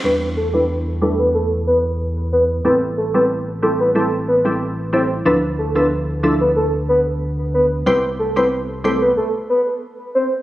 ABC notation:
X:1
M:4/4
L:1/16
Q:1/4=92
K:Ephr
V:1 name="Soft synth lead"
B z A B z2 A B A z B z3 B z | B z A B z2 A B A z B z3 c z | B z A B z2 A B A z B z3 B z | B z A B z2 A B A z B z3 c z |]
V:2 name="Synth pluck"
[G,DEB]3 [G,DEB]3 [G,DEB]2 z8 | [G,CEA]3 [G,CEA]3 [G,CEA]2 [G,CEA] z2 [G,CEA]3 [G,CEA]2 | [F,DEA]3 [F,DEA]3 [F,DEA]2 z8 | [G,CEc]3 [G,CEc]3 [G,CEc]2 z8 |]
V:3 name="Sub bass" clef=bass
E,,16 | A,,,16 | D,,16 | C,,8 z8 |]